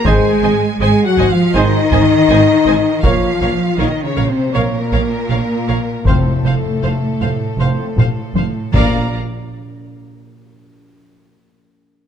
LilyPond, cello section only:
\new Staff \with { instrumentName = "Cello section" } { \clef bass \time 4/4 \key bes \minor \tempo 4 = 80 aes4 \tuplet 3/2 { aes8 ges8 f8 } ees2 | f4 \tuplet 3/2 { ees8 des8 c8 } bes,2 | a,2.~ a,8 bes8 | r1 | }